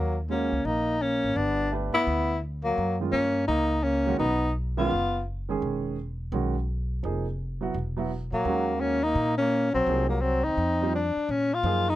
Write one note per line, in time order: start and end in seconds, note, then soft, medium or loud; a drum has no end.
0.00 0.49 D#2 medium
0.00 0.18 F#3 medium
0.00 0.18 A#3 medium
0.29 0.50 G#3 medium
0.29 0.65 A#3 medium
0.29 0.67 C#4 medium
0.29 0.51 C#4 soft
0.29 0.51 F#4 soft
0.29 0.52 A#4 medium
0.52 0.64 C#2 medium
0.65 1.20 A#1 medium
0.65 1.01 A#3 medium
0.65 1.03 D#4 medium
1.01 1.38 A#3 medium
1.01 1.38 C#4 medium
1.23 1.35 G#1 medium
1.36 1.90 G1 medium
1.36 1.72 B3 medium
1.36 1.72 D4 medium
1.71 1.92 A3 medium
1.71 1.93 D4 medium
1.71 1.93 G4 medium
1.71 1.93 B4 medium
1.93 2.39 B3 medium
1.93 2.39 E4 medium
1.93 muted upright bass stroke soft
2.07 2.75 D2 medium
2.64 2.98 F#3 medium
2.64 2.98 A#3 medium
2.78 3.11 F#2 medium
3.00 3.12 D#3 medium
3.00 3.12 G#3 medium
3.00 3.13 C#4 soft
3.00 3.13 F4 medium
3.12 3.46 G2 medium
3.12 3.46 A#3 medium
3.12 3.46 C#4 medium
3.47 4.16 C#2 medium
3.47 3.82 A#3 medium
3.47 3.85 D#4 loud
3.82 4.17 A#3 medium
3.82 4.18 C#4 medium
4.07 4.18 D#3 medium
4.07 4.18 G#3 medium
4.07 4.19 C#4 medium
4.07 4.19 F#4 medium
4.17 4.87 B1 medium
4.17 4.52 B3 medium
4.17 4.52 D#4 medium
4.77 4.89 D#3 medium
4.77 4.89 G#3 medium
4.77 5.23 B3 medium
4.77 4.90 C#4 medium
4.77 5.23 F4 medium
4.77 4.90 F4 medium
4.91 5.58 F#1 medium
5.49 5.95 D#3 medium
5.49 5.95 G#3 medium
5.49 5.95 C#4 medium
5.49 5.96 G#4 medium
5.62 6.29 E1 medium
6.32 7.00 B1 medium
6.32 6.53 D#3 medium
6.32 6.53 G#3 medium
6.32 6.54 C#4 medium
6.32 6.54 F#4 medium
7.03 7.71 F1 medium
7.03 7.24 F3 medium
7.03 7.24 A#3 soft
7.03 7.25 D#4 soft
7.03 7.25 G#4 medium
7.61 7.73 F#3 medium
7.61 7.73 B3 medium
7.61 7.73 E4 medium
7.61 7.74 F#4 medium
7.74 8.29 E1 medium
7.97 8.08 F#3 medium
7.97 8.09 B3 medium
7.97 8.09 E4 medium
7.97 8.09 F#4 medium
8.32 8.44 A#2 medium
8.32 8.82 F#3 medium
8.32 8.82 A#3 medium
8.45 9.13 D#2 medium
8.45 8.99 D#3 medium
8.45 8.99 G#3 medium
8.45 9.00 C#4 medium
8.45 9.00 F#4 medium
8.80 9.03 A#3 medium
8.80 9.05 C#4 medium
9.03 9.38 A#3 medium
9.03 9.37 D#4 loud
9.15 9.70 A#2 medium
9.38 9.72 A#3 medium
9.38 9.71 C#4 medium
9.73 9.86 B1 medium
9.73 10.07 F#3 medium
9.73 10.08 C4 medium
9.87 10.41 C2 medium
9.87 10.08 F3 medium
9.87 10.09 A#3 medium
9.87 10.09 D#4 medium
9.87 10.09 G#4 medium
10.09 10.21 F#3 medium
10.09 10.23 A#3 medium
10.21 10.46 F#3 medium
10.21 10.46 C4 medium
10.44 10.57 D#2 medium
10.44 10.93 C4 medium
10.44 10.93 D#4 medium
10.57 11.12 F2 medium
10.82 10.93 G3 medium
10.82 10.93 C4 medium
10.82 10.93 F4 medium
10.82 10.94 C5 medium
10.95 11.33 D4 medium
11.17 muted upright bass stroke soft
11.29 11.63 A#2 medium
11.29 11.55 C#4 medium
11.54 11.91 F4 loud
11.63 11.96 F#2 medium
11.63 11.85 F3 medium
11.63 11.86 A#3 medium
11.63 11.86 D#4 medium
11.63 11.86 G#4 medium
11.89 11.96 D#4 loud